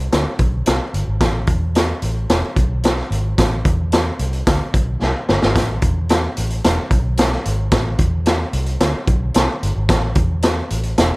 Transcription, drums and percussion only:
0.12 snare, closed hi-hat
0.39 kick, closed hi-hat
0.66 snare, closed hi-hat
0.94 closed hi-hat
1.21 kick, snare, closed hi-hat
1.47 kick, closed hi-hat
1.75 snare, closed hi-hat
2.02 closed hi-hat
2.30 snare, closed hi-hat
2.56 kick, closed hi-hat
2.84 snare, closed hi-hat
2.98 snare
3.12 closed hi-hat
3.38 kick, snare, closed hi-hat
3.65 kick, closed hi-hat
3.92 snare, closed hi-hat
4.19 closed hi-hat
4.33 closed hi-hat
4.47 kick, snare, closed hi-hat
4.74 kick, closed hi-hat
5.02 snare
5.29 snare
5.42 snare
5.56 kick, snare, closed hi-hat
5.82 kick, closed hi-hat
6.09 snare, closed hi-hat
6.37 closed hi-hat
6.50 closed hi-hat
6.64 snare, closed hi-hat
6.91 kick, closed hi-hat
7.17 snare, closed hi-hat
7.32 snare
7.46 closed hi-hat
7.71 kick, snare, closed hi-hat
7.98 kick, closed hi-hat
8.26 snare, closed hi-hat
8.53 closed hi-hat
8.66 closed hi-hat
8.80 snare, closed hi-hat
9.07 kick, closed hi-hat
9.34 snare, closed hi-hat
9.63 closed hi-hat
9.89 kick, snare, closed hi-hat
10.15 kick, closed hi-hat
10.42 snare, closed hi-hat
10.70 closed hi-hat
10.83 closed hi-hat
10.98 snare, closed hi-hat

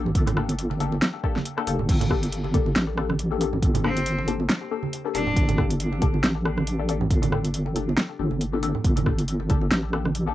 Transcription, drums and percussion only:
0.06 low conga
0.15 kick, closed hi-hat
0.26 cross-stick, closed hi-hat, muted conga, high conga, low conga
0.37 cross-stick, low conga
0.49 closed hi-hat, muted conga
0.58 closed hi-hat
0.71 muted conga
0.80 open hi-hat, high conga
0.92 muted conga
1.02 snare, closed hi-hat
1.24 kick
1.36 snare, high conga
1.45 closed hi-hat
1.58 cross-stick
1.67 open hi-hat
1.79 low conga
1.89 kick, closed hi-hat, crash
2.01 closed hi-hat, high conga, low conga
2.10 kick, cross-stick, low conga
2.23 closed hi-hat, muted conga
2.32 closed hi-hat
2.44 muted conga
2.54 kick, closed hi-hat, high conga
2.66 muted conga
2.76 snare, closed hi-hat
2.98 cross-stick
3.09 cross-stick, high conga
3.19 closed hi-hat
3.41 open hi-hat
3.53 low conga
3.63 kick, closed hi-hat
3.75 closed hi-hat, muted conga, high conga, low conga
3.85 cross-stick, low conga
3.97 closed hi-hat, muted conga
4.06 closed hi-hat
4.19 muted conga
4.27 closed hi-hat, high conga
4.40 muted conga
4.50 snare, closed hi-hat
4.83 high conga
4.93 closed hi-hat
5.15 open hi-hat
5.27 low conga
5.37 kick, closed hi-hat
5.49 closed hi-hat, high conga, low conga
5.58 kick, cross-stick, low conga
5.71 closed hi-hat, muted conga
5.80 closed hi-hat
5.93 muted conga
6.02 kick, closed hi-hat, high conga
6.14 muted conga
6.24 snare, closed hi-hat
6.45 cross-stick
6.57 cross-stick, high conga
6.67 closed hi-hat
6.89 open hi-hat
7.01 low conga
7.11 kick, closed hi-hat
7.22 closed hi-hat, muted conga, high conga, low conga
7.32 cross-stick, low conga
7.45 closed hi-hat, muted conga
7.54 closed hi-hat
7.66 muted conga
7.76 closed hi-hat, high conga
7.89 muted conga
7.97 snare, closed hi-hat
8.31 high conga
8.41 closed hi-hat
8.63 open hi-hat
8.75 low conga
8.84 kick, closed hi-hat
8.97 closed hi-hat, high conga, low conga
9.06 kick, cross-stick, low conga
9.19 closed hi-hat, muted conga
9.28 closed hi-hat
9.40 muted conga
9.50 kick, closed hi-hat, high conga
9.61 muted conga
9.71 snare, closed hi-hat
9.93 cross-stick
10.05 cross-stick, high conga
10.15 closed hi-hat

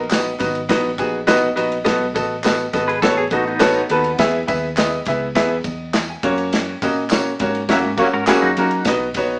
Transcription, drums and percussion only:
0.10 snare, clap, ride, tambourine
0.39 kick, snare, ride, tambourine
0.55 ride
0.69 kick, snare, ride
0.98 kick, ride, tambourine
1.28 snare, clap, ride, tambourine
1.57 ride, tambourine
1.72 ride
1.86 kick, snare, ride, tambourine
2.16 kick, ride, tambourine
2.44 snare, clap, ride, tambourine
2.73 kick, snare, ride, tambourine
2.89 ride
3.02 kick, snare, ride
3.30 kick, ride, tambourine
3.60 snare, clap, ride, tambourine
3.89 ride
4.04 ride
4.18 kick, snare, ride, tambourine
4.48 kick, ride, tambourine
4.77 snare, clap, ride, tambourine
5.05 kick, snare, ride, tambourine
5.35 kick, snare, ride
5.64 kick, ride, tambourine
5.94 snare, clap, ride, tambourine
6.23 kick, ride
6.38 ride
6.53 snare, ride, tambourine
6.82 kick, ride, tambourine
7.10 snare, clap, ride, tambourine
7.39 kick, ride, tambourine
7.55 ride
7.69 kick, snare, ride
7.98 kick, ride, tambourine
8.27 snare, clap, ride, tambourine
8.57 ride, tambourine
8.71 ride
8.85 kick, snare, ride, tambourine
9.14 kick, ride, tambourine

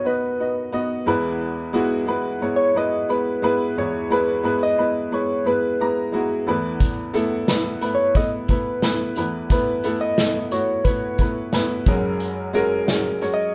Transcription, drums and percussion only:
6.80 kick, closed hi-hat
7.14 closed hi-hat
7.48 snare, closed hi-hat
7.81 closed hi-hat
8.15 kick, closed hi-hat
8.48 kick, closed hi-hat
8.82 snare, closed hi-hat
9.16 closed hi-hat
9.50 kick, closed hi-hat
9.84 closed hi-hat
10.18 snare, closed hi-hat
10.51 closed hi-hat
10.85 kick, closed hi-hat
11.18 kick, closed hi-hat
11.53 snare, closed hi-hat
11.86 kick, closed hi-hat
12.20 closed hi-hat
12.54 closed hi-hat
12.88 snare, closed hi-hat
13.22 closed hi-hat

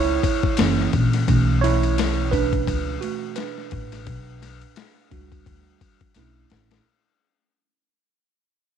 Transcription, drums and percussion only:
0.23 kick, ride
0.43 kick
0.57 snare, hi-hat pedal, ride
0.80 snare
0.93 kick, ride
1.13 snare, ride
1.28 kick, ride
1.64 snare, ride
1.83 ride
1.98 snare, hi-hat pedal, ride
2.33 kick, ride
2.53 kick, ride
2.68 kick, ride
3.03 ride
3.36 snare, hi-hat pedal, ride
3.58 snare
3.71 kick, ride
3.92 snare, ride
4.07 kick, ride
4.42 snare, ride
4.62 ride
4.76 snare, hi-hat pedal, ride
5.11 kick, ride
5.32 kick, ride
5.46 kick, ride
5.81 kick, ride
6.01 kick, ride
6.14 snare, hi-hat pedal, ride
6.50 snare, ride
6.71 snare, ride

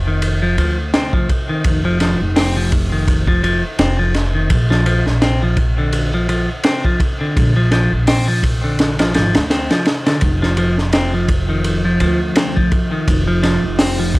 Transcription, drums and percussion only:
0.22 ride
0.58 ride
0.94 snare, ride
1.13 kick
1.29 kick, ride
1.64 kick, ride
2.00 snare, ride
2.36 snare, open hi-hat
2.72 kick, ride
3.08 kick, ride
3.27 kick
3.44 ride
3.79 snare, ride
4.14 snare, ride
4.50 kick, ride
4.71 snare
4.86 ride
5.06 snare
5.22 snare, ride
5.57 kick, ride
5.93 ride
6.29 ride
6.64 snare, ride
6.85 kick
7.00 kick, ride
7.37 kick, ride
7.71 snare, ride
8.07 snare, open hi-hat
8.43 kick, ride
8.79 snare, ride
8.99 snare, ride
9.14 snare, ride
9.35 snare, ride
9.50 snare, ride
9.71 snare, ride
9.85 snare, ride
10.06 snare, ride
10.21 kick, ride
10.43 snare
10.57 ride
10.78 snare
10.93 snare, ride
11.28 kick, ride
11.64 ride
12.00 ride
12.36 snare, ride
12.57 kick
12.72 kick, ride
13.08 kick, ride
13.43 snare, ride
13.79 snare, open hi-hat
14.14 kick, ride

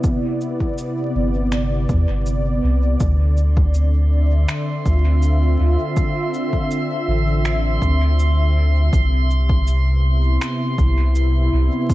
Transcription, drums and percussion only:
0.04 kick, cabasa
0.41 cabasa
0.60 kick
0.78 cabasa
1.52 finger snap, cabasa
1.89 kick, cabasa
2.26 cabasa
3.00 kick, cabasa
3.37 cabasa
3.57 kick
3.74 cabasa
4.48 finger snap, cabasa
4.86 kick, cabasa
5.22 cabasa
5.97 kick, cabasa
6.34 cabasa
6.53 kick
6.71 cabasa
7.45 finger snap, cabasa
7.82 kick, cabasa
8.19 cabasa
8.93 kick, cabasa
9.30 cabasa
9.49 kick
9.67 cabasa
10.41 finger snap, cabasa
10.78 kick, cabasa
11.15 cabasa
11.90 kick, cabasa

